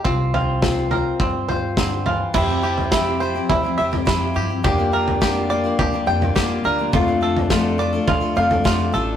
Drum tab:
CC |----------------|x---------------|----------------|----------------|
SD |----o-------o---|----o-------o---|----o-------o---|----o-------o---|
FT |o-o-o-o-o-o-o-o-|o--o----o--o----|o--o----o--o----|o--o----o--o----|
BD |o---o---o---o---|o---o---o---o---|o---o---o---o---|o---o---o---o---|